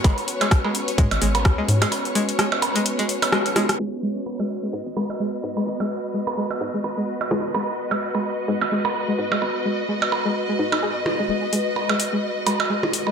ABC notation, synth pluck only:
X:1
M:4/4
L:1/16
Q:"Swing 16ths" 1/4=128
K:G#m
V:1 name="Synth pluck" clef=bass
G, z2 G, z G, z2 G, z G, z2 G, z G, | z2 G, z G, z2 G, z G, z2 G, z G, z | G, z G, z2 G, z G, z2 G, z G, z2 G, | z G, z2 G, z G, z2 G, z G, z2 G, z |
G, z2 G, z G, z2 G, z G, z2 G, z G, | z2 G, z G, z2 G, z G, D D G z2 G, | G, z G, z2 G, z G, z2 G, z G, z2 G, |]